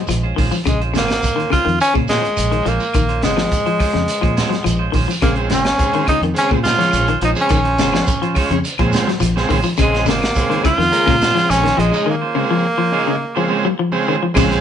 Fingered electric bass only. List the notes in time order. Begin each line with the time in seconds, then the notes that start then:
0.09 A#1
0.39 A#1
0.67 A#1
0.96 G#1
1.67 F2
1.96 A#2
2.39 A#1
2.66 A#1
2.95 A#1
3.24 G#1
3.95 F2
4.23 A#2
4.66 A#1
4.94 A#1
5.23 A#1
5.51 G#1
6.22 F2
6.51 A#2
6.93 A#1
7.22 A#1
7.51 A#1
7.78 G#1
8.51 F2
8.80 A#2
9.21 A#1
9.51 A#1
9.80 A#1
10.07 G#1
10.78 F2
11.08 A#2
11.50 A#1
11.78 A#1
14.36 A#1